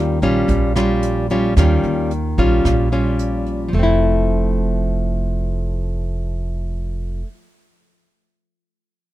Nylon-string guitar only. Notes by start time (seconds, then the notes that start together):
Already playing: D#3 G3 C#4 F4
0.23 G3 C#4 F4
0.48 A#2
0.76 G3 C#4 F4
1.31 G3 C#4 F4
1.58 D#3 G3 C#4 F4
2.38 G3 C#4 F4
2.66 A#2
2.92 G3 C#4 F4
3.69 F3
3.74 A3
3.79 C4
3.83 E4